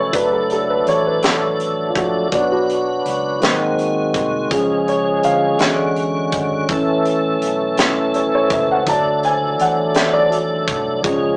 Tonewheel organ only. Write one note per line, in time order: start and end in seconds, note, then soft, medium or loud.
0.00 2.28 F#3 medium
0.00 2.28 A3 medium
0.00 0.11 C#4 soft
0.00 2.28 A4 soft
0.13 2.30 D4 soft
2.31 3.40 F#3 medium
2.31 3.40 B3 soft
2.31 3.40 D4 medium
2.31 4.49 F#4 medium
3.42 4.50 D#3 medium
3.42 6.66 G#3 soft
3.42 4.50 C4 soft
4.50 5.59 F3 medium
4.50 8.82 C#4 soft
4.50 5.59 G#4 medium
5.60 6.68 D3 medium
5.60 6.68 F#4 medium
6.70 8.85 E3 medium
6.70 11.01 A3 soft
6.70 11.01 A4 medium
8.87 11.02 F#3 medium
8.87 11.02 D4 medium
11.03 11.37 F3 medium
11.03 11.37 G#3 medium
11.03 11.37 C#4 medium
11.03 11.37 G#4 medium